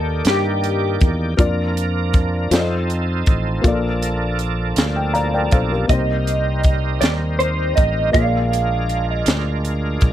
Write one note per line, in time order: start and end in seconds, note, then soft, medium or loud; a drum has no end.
0.00 0.21 D#2 medium
0.00 0.21 D#3 soft
0.00 1.34 D#3 soft
0.00 1.33 A#3 soft
0.00 1.34 A#3 soft
0.00 1.34 D#4 soft
0.00 1.35 G4 soft
0.00 1.37 G4 medium
0.00 0.24 A4 medium
0.00 1.34 D5 soft
0.00 1.36 D5 medium
0.25 0.97 G2 medium
0.25 1.07 G4 medium
0.25 snare medium
0.25 closed hi-hat medium
0.64 closed hi-hat soft
1.01 1.36 E2 medium
1.01 kick medium
1.01 closed hi-hat soft
1.37 2.47 F2 medium
1.37 2.50 F3 medium
1.37 2.51 A#3 medium
1.37 2.51 D4 medium
1.37 2.50 F4 medium
1.37 2.51 A#4 medium
1.37 2.52 D5 medium
1.37 kick medium
1.37 closed hi-hat medium
1.77 closed hi-hat soft
2.14 kick medium
2.14 closed hi-hat soft
2.51 3.22 F2 medium
2.51 3.63 F3 medium
2.51 3.64 C4 medium
2.51 3.64 D#4 medium
2.51 3.62 F4 medium
2.51 2.58 G4 medium
2.51 3.64 A4 medium
2.51 2.59 D5 soft
2.51 snare medium
2.51 closed hi-hat medium
2.58 3.64 A4 medium
2.58 3.68 D#5 medium
2.90 closed hi-hat soft
3.26 3.61 A1 medium
3.26 kick medium
3.26 closed hi-hat soft
3.61 4.73 A#1 medium
3.61 4.73 A#2 medium
3.61 5.86 F3 medium
3.61 5.84 A#3 medium
3.61 5.86 A#3 medium
3.61 5.86 D4 medium
3.61 5.85 F4 medium
3.61 5.86 A4 medium
3.61 kick medium
3.61 closed hi-hat medium
3.66 4.75 A4 medium
3.66 4.76 D5 medium
4.03 closed hi-hat soft
4.39 closed hi-hat soft
4.76 5.48 D2 medium
4.76 snare medium
4.76 closed hi-hat medium
4.96 5.13 G5 soft
5.13 5.32 D5 soft
5.13 5.32 F5 medium
5.13 5.31 A#5 medium
5.13 closed hi-hat soft
5.33 5.51 A#4 soft
5.33 5.51 D5 medium
5.33 5.51 G5 medium
5.51 5.87 B1 medium
5.51 5.70 A4 soft
5.51 5.70 C5 soft
5.51 5.87 F5 soft
5.51 kick medium
5.51 closed hi-hat soft
5.71 5.90 G4 soft
5.71 6.06 A#4 soft
5.87 6.98 C2 medium
5.87 6.98 C3 soft
5.87 8.10 G3 medium
5.87 8.09 A#3 soft
5.87 8.10 C4 soft
5.87 8.10 D#4 soft
5.87 8.11 G4 soft
5.87 8.10 A#4 medium
5.87 6.98 D#5 medium
5.87 kick medium
5.87 closed hi-hat medium
5.93 8.12 C5 medium
6.27 closed hi-hat soft
6.63 kick medium
6.63 closed hi-hat soft
7.01 7.73 D#2 medium
7.01 7.11 D5 medium
7.01 snare medium
7.01 closed hi-hat medium
7.39 7.74 C5 medium
7.39 closed hi-hat soft
7.76 8.12 A1 medium
7.76 8.11 D#5 medium
7.76 kick medium
7.76 closed hi-hat soft
8.12 9.23 A#1 medium
8.12 9.23 A#2 soft
8.12 10.13 G#3 medium
8.12 10.13 A#3 soft
8.12 10.13 D4 soft
8.12 10.13 F4 soft
8.12 10.13 G#4 soft
8.12 10.13 A#4 medium
8.12 9.11 F5 medium
8.12 kick medium
8.12 closed hi-hat medium
8.17 8.22 C#5 soft
8.24 10.13 D5 medium
8.53 closed hi-hat soft
8.89 closed hi-hat soft
9.11 9.60 D#5 medium
9.26 9.97 D2 medium
9.26 snare medium
9.26 closed hi-hat medium
9.65 closed hi-hat soft
10.01 10.13 B1 medium
10.01 kick medium
10.01 closed hi-hat soft